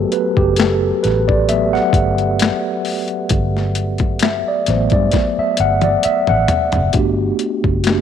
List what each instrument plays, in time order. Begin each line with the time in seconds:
Already playing: tine electric piano F#3 A3 B3 F#4 G4 G#4 A4
0.12 tine electric piano B4, closed hi-hat
0.37 fingered electric bass F#1, tine electric piano G4, kick
0.56 tine electric piano A4, finger snap, snare, closed hi-hat
1.03 fingered electric bass A1, tine electric piano B4, snare, closed hi-hat
1.28 tine electric piano D5, kick
1.49 tine electric piano F#3 A3 B3 E5, closed hi-hat
1.73 tine electric piano F#5, snare
1.93 fingered electric bass G1, kick, closed hi-hat
2.18 closed hi-hat
2.39 finger snap, snare, closed hi-hat
2.85 open hi-hat
3.08 closed hi-hat
3.29 fingered electric bass G1, kick, closed hi-hat
3.57 snare
3.75 closed hi-hat
3.98 kick, closed hi-hat
4.19 tine electric piano E5, finger snap, snare, closed hi-hat
4.48 tine electric piano D5
4.66 fingered electric bass A1, tine electric piano F#3 A3 B3 C5, snare, closed hi-hat
4.90 fingered electric bass G2, tine electric piano D5, kick, closed hi-hat
5.12 kick, snare, closed hi-hat
5.38 tine electric piano E5, muted fingered electric bass stroke
5.57 fingered electric bass G1, tine electric piano F#5, closed hi-hat
5.81 tine electric piano D5, closed hi-hat, high tom
6.03 tine electric piano E5, muted fingered electric bass stroke, closed hi-hat
6.27 fingered electric bass A1, tine electric piano F#5, mid tom
6.48 closed hi-hat, floor tom
6.72 fingered electric bass F#1, closed hi-hat, floor tom
6.93 fingered electric bass G1, tine electric piano A3 B3 D4 F#4, kick, closed hi-hat
6.97 tine electric piano G4
7.39 closed hi-hat
7.64 fingered electric bass F#1, kick
7.84 tine electric piano A3 A#3 D4 F#4, finger snap, snare, closed hi-hat
7.88 tine electric piano G4
7.92 tine electric piano B3